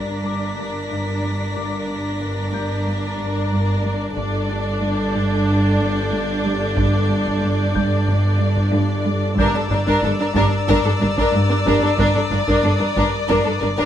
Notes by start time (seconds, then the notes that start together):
Already playing: G1 G2 D4 A#4 D5 A#6 B6
0.24 G2 D6
0.57 G2
0.90 G2
1.23 G3
1.55 G2 D6
1.88 G2
2.21 G2
2.53 G2 G6
2.86 G2
3.19 G2
3.51 G2
3.84 G3
4.16 G1 G2 D4 A4 D5 D6 A6, taiko
4.49 G2 A6
4.82 G2 G6
5.15 G2
5.47 G2
5.79 G2
6.12 G2
6.45 G3
6.77 G2, taiko
7.10 G2
7.26 taiko
7.43 G2
7.75 G2 G6, taiko
8.07 G2, taiko
8.40 G2
8.57 taiko
8.72 G2
9.05 G3
9.38 G1 G2 D4 A#4 D5 A#5 E6 G6, taiko
9.55 G2 D4 A4
9.70 G1 G2 D4 A#4
9.87 G2 D4 A#4, taiko
10.03 G1 G2 D4 A4
10.20 G2 D4 A#4
10.35 G1 G2 D4 A#4 A6, taiko
10.68 G1 G2 D4 A#4, taiko
10.85 G2 D4 A4
11.01 G1 G2 D4 A#4
11.18 G2 D4 A#4, taiko
11.33 G2
11.49 G2 D4 A#4
11.66 G1 G2 G3 D4 A#4
11.82 G2 D4 A4
11.98 G1 G2 D4 A#4, taiko
12.16 G2 D4 A4
12.31 G1 G2 D4 A#4
12.48 G2 D4 A#4, taiko
12.54 D#6
12.63 G1 G2 D4 A4 C7
12.79 G2 D4 A#4
12.96 G1 G2 D4 A#4, taiko
13.29 G1 G2 D4 A#4, taiko
13.45 G2 D4 A4
13.61 G1 G2 D4 A#4
13.77 G2 D4 A#4, taiko